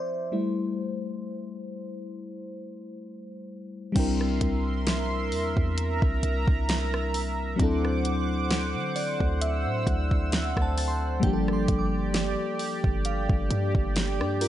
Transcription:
Already playing: fm electric piano C5 D5 E5
0.32 fm electric piano G3 A3 E4
3.92 808-style bass C2, fm electric piano G3 C4 D4, analog synth pad A#4 E5 C6, synth bell G5, kick, closed hi-hat, crash
3.98 fm electric piano E4 A#4
4.21 cross-stick
4.41 808-style bass C2, kick, closed hi-hat
4.87 snare, closed hi-hat
5.32 808-style bass E2, open hi-hat
5.57 808-style bass E2, kick
5.78 analog synth pad A#5, closed hi-hat
6.02 808-style bass C2, kick
6.23 808-style bass C2, closed hi-hat
6.48 808-style bass C2, kick
6.69 snare, closed hi-hat
6.94 cross-stick
7.14 open hi-hat
7.56 808-style bass D2, fm electric piano F#3 C4 D4, analog synth pad C5 F#5 D6, kick, closed hi-hat
7.61 fm electric piano E4 A4
7.85 cross-stick
8.05 closed hi-hat
8.51 snare, closed hi-hat
8.75 808-style bass D3
8.96 fm electric piano D5, open hi-hat
9.20 808-style bass D2, kick
9.41 fm electric piano E5, analog synth pad E6, closed hi-hat
9.66 808-style bass A2
9.87 808-style bass D2, kick, closed hi-hat
10.11 kick
10.32 synth bell F#5, fm electric piano F#5, snare, closed hi-hat
10.57 808-style bass D2, kick, cross-stick
10.62 synth bell A5
10.78 fm electric piano A5, open hi-hat
10.88 synth bell C6
11.20 808-style bass G1, fm electric piano G3 A#3 D4, analog synth pad G4 D5, synth bell G5, kick, closed hi-hat
11.25 fm electric piano F3 G4
11.33 fm electric piano A4
11.48 cross-stick
11.53 synth bell C6
11.68 808-style bass G1, kick, closed hi-hat
11.79 synth bell D6
12.14 snare, closed hi-hat
12.59 open hi-hat
12.84 808-style bass G1, kick
13.05 synth bell F5, closed hi-hat
13.29 808-style bass G1, kick
13.50 808-style bass G2, closed hi-hat
13.75 808-style bass G1, kick
13.96 snare, closed hi-hat
14.20 808-style bass G2, fm electric piano D4 G4, cross-stick
14.41 fm electric piano F4 A#4, open hi-hat

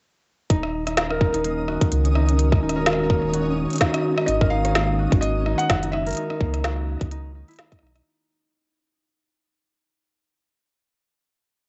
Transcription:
0.50 sub bass D#1, ambient pad D#3, synth texture C#4 D#6, harp D#4, kick, closed hi-hat
0.63 cross-stick
0.80 ambient pad C#4
0.86 ambient pad G#3, harp D#4, cross-stick, closed hi-hat
0.97 harp D#4, snare, closed hi-hat
1.11 harp A#4, cross-stick
1.21 harp D#4, kick
1.34 sub bass D#1, harp D#4, closed hi-hat
1.44 harp A#3, closed hi-hat
1.68 harp F#4, cross-stick
1.81 kick, closed hi-hat
1.87 ambient pad F#4
1.92 sub bass C#2, ambient pad A#4, closed hi-hat
2.05 closed hi-hat
2.15 harp D#4, cross-stick
2.29 closed hi-hat
2.39 closed hi-hat
2.52 harp D#4, kick, cross-stick
2.63 sub bass D#1, harp D#4
2.69 cross-stick, closed hi-hat
2.76 harp A#4
2.86 harp D#4, snare, closed hi-hat
2.93 cross-stick
3.00 harp D#4
3.10 harp A#3, kick
3.23 sub bass D#1
3.33 harp F#4, closed hi-hat
3.70 closed hi-hat
3.73 closed hi-hat
3.76 closed hi-hat
3.78 harp D#4, kick, snare, closed hi-hat
3.94 cross-stick, closed hi-hat
4.18 harp D#4, cross-stick
4.26 sub bass G#1, harp D#4, felt piano D#5, closed hi-hat
4.41 harp A#4, kick, cross-stick
4.50 harp D#4, felt piano F5
4.65 harp D#4, cross-stick, closed hi-hat
4.75 harp A#3, snare, closed hi-hat
4.99 harp F#4
5.12 sub bass G#1, kick, closed hi-hat
5.21 felt piano D#5, closed hi-hat
5.46 harp D#4, cross-stick
5.58 felt piano F#5, closed hi-hat
5.70 sub bass F#1, kick, snare, closed hi-hat
5.83 harp D#4, closed hi-hat
5.92 harp D#4, felt piano E5, cross-stick
6.07 harp A#4, closed hi-hat
6.09 closed hi-hat
6.11 closed hi-hat
6.13 closed hi-hat
6.15 closed hi-hat
6.17 harp D#4, closed hi-hat
6.30 harp D#4, cross-stick
6.41 sub bass C#2, harp A#3, kick
6.54 cross-stick, closed hi-hat
6.64 harp F#4, snare, closed hi-hat
7.01 sub bass C#2, kick, closed hi-hat
7.11 harp D#4, closed hi-hat
7.35 harp D#4
7.48 harp E4, closed hi-hat
7.51 closed hi-hat
7.54 closed hi-hat
7.56 harp D#4, snare, closed hi-hat
7.59 closed hi-hat
7.72 harp D#4, kick, cross-stick, closed hi-hat
7.79 sub bass B1, harp D#4, cross-stick
7.87 cross-stick
7.96 harp D#4, cross-stick, closed hi-hat

